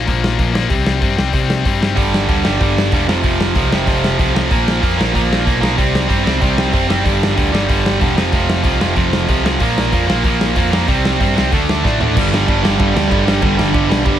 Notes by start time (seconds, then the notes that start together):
0.07 A#1 A#2 F3 A#3, kick, open hi-hat
0.24 snare
0.39 A#1 A#2 F3 A#3, kick, open hi-hat
0.54 A#2 F3 A#3, snare
0.70 C2 C3 G3 C4, kick, open hi-hat
0.86 snare
1.01 G2 C3 G3 C4, kick, open hi-hat
1.17 C2 C3 G3 C4, snare
1.33 C2 C3 G3 C4, kick, open hi-hat
1.50 snare
1.65 G2 C3 G3 C4, kick, open hi-hat
1.81 C3 G3 C4, snare
1.97 G1 G2 D3 G3, kick, open hi-hat
2.14 snare
2.28 D2 G2 D3 G3, kick, open hi-hat
2.44 G1 G2 D3 G3, snare
2.61 G1 G2 D3 G3, kick, open hi-hat
2.78 snare
2.92 E1 G2 D3 G3, kick, open hi-hat
3.08 F1 F2 C3 F3, snare
3.24 F1 F2 C3 F3, kick, open hi-hat
3.41 snare
3.55 C2 F2 C3 F3, kick, open hi-hat
3.72 F1 F2 C3 F3, snare
3.87 F1 F2 C3 F3, kick, open hi-hat
4.04 snare
4.18 C2 F2 C3 F3, kick, open hi-hat
4.35 F2 C3 F3, snare
4.50 A#1 A#2 F3 A#3, kick, open hi-hat
4.68 snare
4.81 F2 A#2 F3 A#3, kick, open hi-hat
4.97 A#1 A#2 F3 A#3, snare
5.12 A#1 A#2 F3 A#3, kick, open hi-hat
5.33 snare
5.46 B1 A#2 F3 A#3, kick, open hi-hat
5.61 A#2 F3 A#3, snare
5.77 C2 C3 G3 C4, kick, open hi-hat
5.95 snare
6.08 G2 C3 G3 C4, kick, open hi-hat
6.24 C2 C3 G3 C4, snare
6.41 C2 C3 G3 C4, kick, open hi-hat
6.58 snare
6.73 F#1 C3 G3 C4, kick, open hi-hat
6.88 C3 G3 C4, snare
7.03 G1 G2 D3 G3, kick, open hi-hat
7.23 snare
7.35 D2 G2 D3 G3, kick, open hi-hat
7.52 G1 G2 D3 G3, snare
7.67 G1 G2 D3 G3, kick, open hi-hat
7.86 snare
8.00 E1 G2 D3 G3, kick, open hi-hat
8.16 F1 F2 C3 F3, snare
8.32 F1 F2 C3 F3, kick, open hi-hat
8.50 snare
8.64 C2 F2 C3 F3, kick, open hi-hat
8.81 F1 F2 C3 F3, snare
8.96 F1 F2 C3 F3, kick, open hi-hat
9.13 snare
9.28 C2 F2 C3 F3, kick, open hi-hat
9.44 F2 C3 F3, snare
9.59 A#1 A#2 F3 A#3, kick, open hi-hat
9.78 snare
9.92 F2 A#2 F3 A#3, kick, open hi-hat
10.07 A#1 A#2 F3 A#3, snare
10.24 A#1 A#2 F3 A#3, kick, open hi-hat
10.41 snare
10.56 F2 A#2 F3 A#3, kick, open hi-hat
10.72 A#2 F3 A#3, snare
10.88 C2 C3 G3 C4, kick, open hi-hat
11.05 snare
11.20 G2 C3 G3 C4, kick, open hi-hat
11.36 C2 C3 G3 C4, snare
11.51 D2 D3 A3 D4, kick, open hi-hat
11.69 snare
11.84 A2 D3 A3 D4, kick, snare
12.01 D3 A3 D4, floor tom
12.17 G1 G2 D3 G3, kick, crash
12.33 G2 D3 G3, snare
12.48 G1 G2 D3 G3, kick, ride
12.63 G1 G2 D3 G3, snare
12.79 G1 G2 D3 G3, kick, ride
12.94 D2 G2 D3 G3, snare
13.10 G1 G2 D3 G3, kick, ride
13.26 G2 D3 G3, snare
13.42 G1 G2 D3 G3, kick, ride
13.57 G1 G2 D3 G3, snare
13.74 G1 G2 D3 G3, kick, ride
13.89 B1 G2 D3 G3, snare
14.06 G1 G2 D3 G3, kick, ride